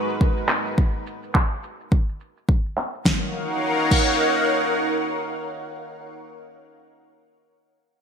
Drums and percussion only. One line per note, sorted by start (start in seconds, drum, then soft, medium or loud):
0.09 shaker soft
0.21 kick medium
0.21 shaker soft
0.37 shaker soft
0.49 clap medium
0.49 shaker medium
0.66 shaker soft
0.78 kick loud
0.78 shaker soft
1.07 shaker medium
1.23 shaker soft
1.35 kick medium
1.35 clap medium
1.63 shaker medium
1.81 shaker soft
1.92 kick medium
1.92 shaker soft
2.09 shaker soft
2.20 shaker medium
2.37 shaker soft
2.49 kick medium
2.49 shaker soft
2.66 shaker soft
2.78 clap medium
2.78 shaker medium
2.95 shaker soft
3.06 kick medium
3.06 snare medium
3.91 kick loud
3.91 crash medium